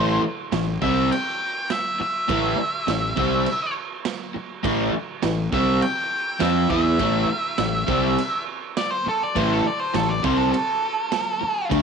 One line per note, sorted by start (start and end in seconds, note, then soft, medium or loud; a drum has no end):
0.00 0.21 A1 medium
0.00 0.22 A2 loud
0.00 0.23 E3 loud
0.00 0.23 A3 loud
0.00 0.20 C5 loud
0.22 muted fingered electric bass stroke soft
0.22 muted overdriven electric guitar stroke medium
0.52 0.80 A1 medium
0.52 0.76 A2 medium
0.52 0.76 E3 medium
0.52 snare loud
0.52 crash medium
0.81 1.09 C2 loud
0.81 1.10 C3 loud
0.81 1.10 G3 loud
0.81 1.11 C4 loud
0.81 1.11 E5 loud
0.81 kick loud
1.11 1.69 G5 medium
1.11 crash medium
1.70 1.99 E5 loud
1.70 snare loud
1.70 crash medium
2.00 3.73 E5 medium
2.00 muted overdriven electric guitar stroke medium
2.00 muted fingered electric bass stroke soft
2.28 2.57 A1 medium
2.28 2.56 A2 loud
2.28 2.58 E3 loud
2.28 2.58 A3 loud
2.28 kick loud
2.28 crash medium
2.57 muted overdriven electric guitar stroke medium
2.57 muted fingered electric bass stroke soft
2.87 3.15 A1 medium
2.87 3.11 A2 medium
2.87 3.11 E3 medium
2.87 snare loud
2.87 crash medium
3.16 3.45 C2 medium
3.16 3.45 C3 loud
3.16 3.46 G3 loud
3.16 3.46 C4 loud
3.16 kick loud
3.46 crash medium
4.05 snare loud
4.05 crash medium
4.35 muted overdriven electric guitar stroke medium
4.35 muted fingered electric bass stroke soft
4.63 4.92 A1 medium
4.63 4.92 A2 medium
4.63 4.93 E3 loud
4.63 4.93 A3 loud
4.63 kick loud
4.63 crash medium
4.93 muted overdriven electric guitar stroke medium
4.93 muted fingered electric bass stroke soft
5.23 5.51 A1 medium
5.23 5.47 A2 medium
5.23 5.47 E3 medium
5.23 snare loud
5.23 crash medium
5.52 5.80 C2 medium
5.52 5.81 C3 loud
5.52 5.82 G3 loud
5.52 5.82 C4 loud
5.52 5.82 E5 medium
5.52 kick loud
5.82 6.39 G5 medium
5.82 crash medium
6.40 6.68 F2 medium
6.40 6.69 F3 medium
6.40 6.69 C4 medium
6.40 6.70 F4 loud
6.40 6.70 E5 medium
6.40 snare loud
6.40 crash medium
6.70 6.98 E2 loud
6.70 6.99 E3 medium
6.70 6.99 B3 medium
6.70 7.00 E4 loud
6.70 8.43 E5 medium
6.70 kick loud
6.99 7.27 A1 medium
6.99 7.28 A2 loud
6.99 7.28 E3 loud
6.99 7.28 A3 loud
6.99 kick loud
6.99 crash medium
7.29 muted fingered electric bass stroke soft
7.29 muted overdriven electric guitar stroke medium
7.58 7.86 A1 medium
7.58 7.82 A2 medium
7.58 7.82 E3 medium
7.58 snare loud
7.58 crash medium
7.87 8.15 C2 medium
7.87 8.16 C3 medium
7.87 8.16 G3 loud
7.87 8.17 C4 loud
7.87 kick loud
8.18 crash medium
8.77 8.90 D5 loud
8.77 snare loud
8.77 crash medium
8.90 9.05 C5 medium
9.06 9.21 A4 medium
9.06 muted overdriven electric guitar stroke medium
9.06 muted fingered electric bass stroke soft
9.23 9.38 D5 loud
9.35 9.63 A1 medium
9.35 9.63 A2 loud
9.35 9.64 E3 loud
9.35 9.64 A3 loud
9.35 9.51 C5 loud
9.35 kick loud
9.35 crash medium
9.53 9.66 A4 medium
9.65 9.80 D5 loud
9.65 muted overdriven electric guitar stroke medium
9.65 muted fingered electric bass stroke soft
9.80 9.94 C5 medium
9.94 10.22 A1 medium
9.94 10.17 A2 medium
9.94 10.18 E3 medium
9.94 10.09 A4 medium
9.94 snare loud
9.94 crash medium
10.09 10.24 D5 loud
10.23 10.51 C2 loud
10.23 10.52 C3 medium
10.23 10.52 G3 loud
10.23 10.53 C4 loud
10.23 10.37 C5 medium
10.23 kick loud
10.37 10.51 A4 medium
10.52 11.67 A4 loud
10.52 crash medium
11.12 snare loud
11.12 crash medium
11.41 muted overdriven electric guitar stroke medium
11.41 muted fingered electric bass stroke soft
11.70 11.82 D2 medium
11.70 11.82 D3 loud
11.70 11.82 A3 loud
11.70 11.82 D4 loud
11.70 kick loud
11.70 crash medium